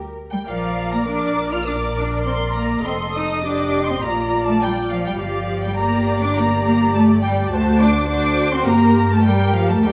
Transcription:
Already playing: A#4
0.31 G3 G5
0.46 A#1 F3 A#4 D5 F5
0.92 A#3 A#5
1.07 D4 A#4 D5 D6
1.52 F4 F6
1.66 D4 A#4 D5 D6
1.96 D4 D6
2.25 C4 C6
2.55 A#3 A#5
2.84 F1 C4 A4 D#5 C6
3.14 D#4 D#6
3.43 D4 G4 D6
3.87 C4 C6
4.02 A#1 A#3 F4 D5 A#5
4.46 A3 A5
4.61 G3 G5
4.91 F3 F5
5.06 G3 G5
5.19 G1 F3 G4 D5 F5
5.64 G3 G5
5.78 A#3 G4 D5 A#5
6.22 D4 D6
6.36 A#3 G4 D5 A#5
6.65 A#3 A#5
6.94 A3 A5
7.23 G3 G5
7.51 D2 A3 F#4 C5 A5
7.78 D4 D6
8.07 D4 F#4 C5 D6
8.52 C4 C6
8.67 G2 A#3 G4 A#4 A#5
9.11 A3 A5
9.25 G3 G4 A#4 G5
9.54 F3 F5
9.68 A3 A5
9.82 D#2 G3 G4 A#4 G5

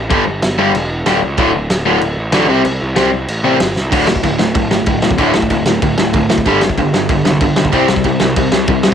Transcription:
Already playing: A1
0.10 G1 G2 D3 G3, kick, crash
0.28 G1
0.42 G1, snare, crash
0.58 G1 G2 D3 G3
0.74 E1, crash
1.06 D1 G2 D3 G3, snare, crash
1.23 C#2
1.38 D1 D2 A2 D3, kick, crash
1.54 D1
1.69 D1, snare, crash
1.86 D2 A2 D3
2.01 D1, crash
2.17 A1
2.32 A1 D2 A2 D3, snare, crash
2.49 C2 C3 G3 C4
2.65 C2, crash
2.82 C2
2.96 C2 C3 G3 C4, snare, crash
3.12 C2
3.28 A1, crash
3.44 C3 G3 C4
3.60 G1, snare, crash
3.76 C2, snare
3.92 D1 D2 A2 D3, kick, crash
4.07 D1 D2 A2, snare
4.16 kick
4.23 D1 D2 A2, kick, crash
4.39 D1 D2 A2, snare
4.54 D1 D2 A2, kick, crash
4.71 G1 D2 A2, snare
4.86 D1 D2 A2, kick, crash
5.02 D1 D2 A2, snare
5.11 kick
5.18 D1 D2 A2 D3, kick, crash
5.34 D1 D2 A2, snare
5.42 kick
5.50 D1 D2 A2, kick, crash
5.65 D1 D2 A2, snare
5.82 D1 D2 A2, kick, crash
5.98 D1 D2 A2, snare
6.13 D1 D2 A2, kick, crash
6.29 D1 D2 A2, snare
6.38 kick
6.46 G1 G2 D3 G3, kick, crash
6.61 G1 G2 D3, snare
6.69 kick
6.78 G1 G2 D3, kick, crash
6.93 G1 G2 D3, snare
7.09 G1 G2 D3, kick, crash
7.25 C2 G2 D3, snare
7.41 G1 G2 D3, kick, crash
7.56 B1 G2 D3, snare
7.65 kick
7.73 C2 C3 G3 C4, kick, crash
7.88 C2 C3 G3, snare
7.96 kick
8.04 C2 C3 G3, kick, crash
8.20 C2 C3 G3, snare
8.36 C2 C3 G3, kick, crash
8.52 C2 C3 G3, snare
8.68 C2 C3 G3, kick, crash
8.83 C2 C3 G3, snare

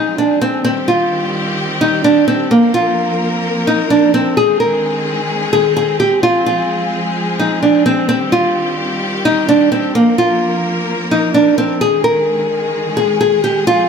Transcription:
Already playing: F3 G#3 C4 D#4 G#4
0.18 D4
0.41 C4
0.65 D#3 G3 C4 G4
0.88 F4
1.81 D#4
2.04 D4
2.28 C4
2.51 F3 A#3 C4 A#4
2.74 F4
3.67 D#4
3.90 D4
4.14 C4
4.37 D#3 G#3 G#4
4.60 A#4
5.53 G#4
5.77 G#4
6.00 G4
6.23 F3 G#3 F4 G#4
6.46 F4
7.39 D#4
7.63 D4
7.86 C4
8.09 D#3 G3 C4 G4
8.32 F4
9.25 D#4
9.49 D4
9.72 C4
9.95 F3 A#3 A#4
10.18 F4
11.11 D#4
11.34 D4
11.58 C4
11.81 D#3 G#3 G#4
12.04 A#4
12.97 G#4
13.21 G#4
13.44 G4
13.67 F3 C4 F4

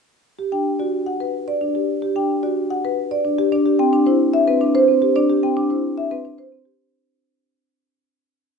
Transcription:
0.39 G4
0.52 D4 G5
0.79 F#4 D5
1.06 F#5
1.20 B4
1.48 D5
1.61 D4
1.75 G4
2.02 G4
2.16 D4 G5
2.43 F#4 D5
2.70 F#5
2.85 B4
3.11 D5
3.25 D4
3.38 G4
3.52 D4 D5
3.66 G4
3.79 C4 G5
3.93 D4
4.06 E4 C5
4.34 E5
4.48 C4 B4
4.61 D4
4.75 C5
4.88 C4
5.02 G4
5.16 D4 D5
5.30 G4
5.43 C4 G5
5.57 D4
5.70 E4 C5
5.98 E5
6.11 C4 B4
6.25 D4
6.38 C5
6.52 C4
6.65 G4

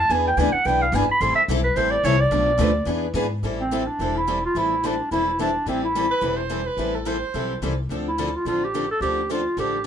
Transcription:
Already playing: A5
0.09 E2 E3 B3 D4 G#4 B4 G#5
0.28 G5
0.37 D2 E3 B3 D4 G#4 B4 G#5
0.53 F#5, muted upright bass stroke
0.65 B1 E3 B3 D4 G#4 B4 G5
0.82 F5
0.92 G1 E3 B3 D4 G#4 B4 G#5
1.09 B5, muted upright bass stroke
1.21 A1 E3 G3 C4 E4 A4 C6
1.36 E5
1.48 B1 E3 G3 C4 E4 A4
1.64 B4
1.76 A1 E3 G3 C4 E4 A4 C5
1.91 D5
2.04 C2 E3 G3 C4 E4 A4 C#5
2.20 D5
2.31 B1 B2 F3 A3 D4 A4 B4
2.59 D2 B2 F3 A3 D4 A4 B4
2.86 E2 E3 B3 D4 G#4 B4
3.14 G#2 E3 B3 D4 G#4 B4
3.43 A1 E3 G3 C4 E4 A4
3.61 C4
3.71 E3 G3 C4 E4 A4
3.87 D4
3.99 E1 E3 G3 C4 E4 A4
4.17 E4
4.27 E3 G3 C4 E4 A4
4.46 F4
4.55 A1 E3 G3 C4 E4 A4
4.83 E3 G3 C4 D4 E4 A4
5.11 E1 E3 G3 C4 E4 A4
5.39 E3 G3 C4 D4 E4 A4
5.66 A1 E3 G3 C4 E4 A4
5.84 E4
5.95 E3 G3 C4 E4 A4
6.11 B4
6.22 E1 E3 G3 C4 E4 A4
6.37 C5
6.51 E3 G3 C4 E4 A4
6.66 B4
6.77 A1 E3 G3 C4 E4 A4
6.96 A4
7.05 E3 G3 C4 E4 A4 C5
7.34 B1 E3 G3 C4 E4 A4
7.62 C2 E3 G3 C4 E4 A4
7.89 D2 D3 F3 C4 D4 A4
8.08 E4
8.18 D3 F3 C4 D4 A4
8.36 F4
8.45 A1 D3 F3 C4 D4 F4 A4
8.65 G4
8.74 D3 F3 C4 D4 A4
8.91 A4
9.01 D2 D3 F3 C4 D4 G4 A4
9.29 D3 F3 C4 D4 F4 A4
9.57 A1 D3 F3 C4 D4 G4 A4

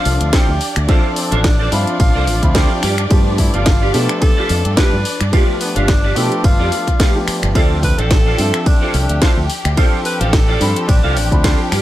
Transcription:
Already playing: F3 C4 D4 F4 A4 D5 E5
0.05 C2, open hi-hat
0.21 D2, muted clean electric guitar stroke, closed hi-hat
0.32 F3 C4 D4 E4 F4 G4 A4 C5 D5, kick, snare, closed hi-hat, ride
0.48 D2
0.61 muted clean electric guitar stroke, open hi-hat
0.76 D2, finger snap, closed hi-hat
0.87 F3 C4 D4 F4 A4 C5 D5 E5, kick, closed hi-hat, ride
1.16 C4, open hi-hat
1.31 A1 D4 F4 A4 C5 E5, closed hi-hat
1.44 kick, snare, closed hi-hat, ride
1.59 F4 A4 C5 D5
1.71 G2 F3 C4 D4 F4 E5 B5, open hi-hat
1.87 closed hi-hat
2.00 A1 F4, kick, closed hi-hat, ride
2.15 C2 F4 A4 C5 D5
2.27 A1, open hi-hat
2.42 D2 F3 C4 D4 E5 B5, muted clean electric guitar stroke, kick, closed hi-hat
2.55 F4 G4 A4 C5 D5, kick, snare, closed hi-hat, ride
2.83 G2 F4 G4 B4 D5, finger snap, open hi-hat
2.98 finger snap, closed hi-hat
3.10 G2 F3 A3 B3 D4 G4, kick, closed hi-hat, ride
3.38 E4, kick, open hi-hat
3.54 G1 F4 G4 B4 D5, closed hi-hat
3.66 kick, snare, closed hi-hat, ride
3.82 F4 G4 B4 D5
3.93 B2 F3 A3 B3 D4 G4 A4, open hi-hat
4.09 finger snap, closed hi-hat
4.21 A4, kick, closed hi-hat, ride
4.37 F4 G4 B4 D5
4.49 F2, open hi-hat
4.65 G2, muted clean electric guitar stroke, closed hi-hat
4.77 F3 A3 B3 D4 F4 G4 B4 D5, kick, snare, closed hi-hat, ride
4.93 G2
5.05 open hi-hat
5.21 G2, finger snap, closed hi-hat
5.32 F3 A3 B3 D4 F4 G4 B4 D5, kick, closed hi-hat, ride
5.61 B3, open hi-hat
5.76 G1 D4 F4 G4 B4 F5, closed hi-hat
5.88 kick, snare, closed hi-hat, ride
6.04 F4 G4 B4 D5
6.15 B2 F3 A3 B3 D4 G4 A4, open hi-hat
6.32 closed hi-hat
6.44 G1 F4, kick, closed hi-hat, ride
6.59 F2 F4 G4 B4 D5
6.72 open hi-hat
6.87 muted clean electric guitar stroke, kick, closed hi-hat
6.99 F3 A3 B3 D4 F4 G4 B4 D5, kick, snare, closed hi-hat, ride
7.15 F3 A3 B3 D4 G4
7.27 finger snap, muted fingered electric bass stroke, open hi-hat
7.43 G1, finger snap, closed hi-hat
7.54 D2 F3 C4 D4 F4 G4 A4 C5 D5 E5 G5, kick, closed hi-hat, ride
7.83 B4, kick, open hi-hat
7.98 A1 F4 A4 C5 D5, closed hi-hat
8.11 kick, snare, closed hi-hat, ride
8.26 F4 A4 C5 D5
8.38 G2 F3 C4 D4 A4 E5, open hi-hat
8.54 finger snap, closed hi-hat
8.66 D4, kick, closed hi-hat, ride
8.81 F4 A4 C5 D5
8.94 C2 D4, open hi-hat
9.09 D2, muted clean electric guitar stroke, closed hi-hat
9.21 F3 C4 D4 E4 F4 A4 C5 F5, kick, snare, closed hi-hat, ride
9.37 D2
9.49 muted clean electric guitar stroke, open hi-hat
9.65 D2, finger snap, closed hi-hat
9.77 F3 C4 D4 F4 A4 C5 D5, kick, closed hi-hat, ride
10.05 B4, open hi-hat
10.20 A1 F4 A4 C5 F5, closed hi-hat
10.33 kick, snare, closed hi-hat, ride
10.48 F4 A4 C5 D5
10.60 G2 F3 C4 D4 B5, open hi-hat
10.76 closed hi-hat
10.88 A1 D4, kick, closed hi-hat, ride
11.03 C2 F4 A4 C5 F5
11.16 A1 D4, open hi-hat
11.31 D2 F3 C4 D4 B5, kick, closed hi-hat
11.43 F4 A4 C5 D5, kick, snare, closed hi-hat, ride
11.71 G2 F4 G4 B4 D5, finger snap, open hi-hat

